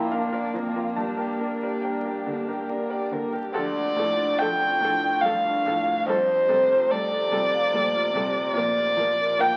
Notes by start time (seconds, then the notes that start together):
Already playing: F3 A#3 D4 E4 F4 A#4 D5 G5 A5 A#5 C6
0.12 D4 A#4 F5
0.32 F4 A#4 D5
0.54 F3 C4 A#4 F5
0.76 F4 A#4
0.96 G2 D4 G4 A5
1.17 G4 A#4
1.40 D4 A#4 G5
1.63 G4 A#4 D5
1.82 A#4 G5
2.04 G4 A#4
2.26 D3 D4 G4
2.48 G4 A#4
2.69 D4 A#4 D5
2.90 G4 A#4 D5
3.11 D3 A#4 D5
3.32 G4 A#4
3.54 D2 F3 A3 D4 F4 A4 D5
3.96 A2 F3 F4 A4
4.19 D4
4.38 F3 A4 G5
4.61 F4
4.80 A2 F3 D4 A4
5.03 D5
5.21 G2 F3 A4 F5
5.46 D4
5.66 A2 F3 A4
6.07 F2 G3 F4 G4 A4 C5
6.48 C3 G3 A4
6.71 F4
6.90 G3 A4 D5
7.12 A4
7.31 C3 G3 F4 A4
7.54 F5
7.73 A#2 G3 A4
7.95 F4
8.14 C3 G3 A4
8.54 A#2 F3 A#3 F4 A#4 D5
8.96 F3 A#4 D5
9.21 A#4
9.39 F3 A#4 F5 G5